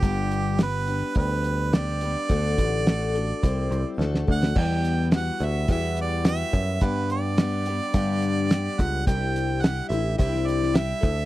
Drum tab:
CC |----------------|----------------|x---------------|----------------|
HH |x-x-x-x-x-x-x-x-|x-x-x-x-x-x-----|--x-x-x-x-x-x-x-|x-x-x-x-x-x-x-x-|
SD |----o-------oo--|----o-------oo-o|----o-------o---|----o-------o---|
BD |o-------o-------|o-o-----o-----o-|o-------o-----o-|o-------o-----o-|

CC |----------------|
HH |x-x-x-x-x-x-x-x-|
SD |----o----o-oo---|
BD |o-------o-----o-|